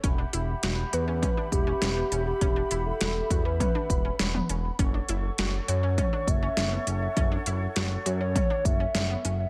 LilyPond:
<<
  \new Staff \with { instrumentName = "Flute section" } { \time 4/4 \key e \dorian \tempo 4 = 101 <g' e'' fis'' b''>1~ | <g' e'' fis'' b''>1 | <a' cis'' fis'' cis'''>1~ | <a' cis'' fis'' cis'''>1 | }
  \new Staff \with { instrumentName = "Soft synth lead" } { \time 4/4 \key e \dorian r4. b'16 b'8. g'4~ g'16 g'16~ | g'8. a'4 b'16 b'4 r4 | r4. cis''16 cis''8. e''4~ e''16 e''16~ | e''16 r4 r16 cis''16 cis''8. e''4~ e''16 e''16 | }
  \new Staff \with { instrumentName = "Synth arpeggio sound" } { \time 4/4 \key e \dorian cis'16 d'16 e'8 fis'8 fis'16 cis'16 cis'16 d'8 cis'16 cis'16 b16 cis'8 | cis'16 d'16 e'8 fis'8 fis'16 cis'16 cis'16 d'8 cis'16 cis'16 b16 cis'8 | cis'16 d'16 e'8 fis'8 fis'16 cis'16 cis'16 d'8 cis'16 cis'16 b16 cis'8 | cis'16 d'16 e'8 fis'8 fis'16 cis'16 cis'16 d'8 cis'16 cis'16 b16 cis'8 | }
  \new Staff \with { instrumentName = "Analog synth bass" } { \clef bass \time 4/4 \key e \dorian e,,8 e,,8 e,,8 e,8. r16 e,,8 e,,8 e,,8 | e,,8 e,,8 e,,8 e,8. r16 e,,8 e,,8 e,,8 | fis,,8 fis,,8 fis,,8 fis,8. r16 fis,,8 fis,,8 fis,,8 | fis,,8 fis,,8 fis,,8 fis,8. r16 fis,,8 fis,,8 fis,,8 | }
  \new DrumStaff \with { instrumentName = "Drums" } \drummode { \time 4/4 <hh bd>8 hh8 <hh sn>8 hh8 <hh bd toml>8 <hh bd>8 <hh sn>8 hh8 | <hh bd>8 hh8 <hh sn>8 <hh bd>8 <hh bd toml>8 <hh bd>8 <hh sn>16 toml16 hh8 | <hh bd>8 hh8 <hh sn>8 hh8 <hh bd toml>8 <hh bd>8 <hh sn>8 hh8 | <hh bd>8 hh8 <hh sn>8 hh8 <hh bd toml>8 <hh bd>8 <hh sn>8 hh8 | }
>>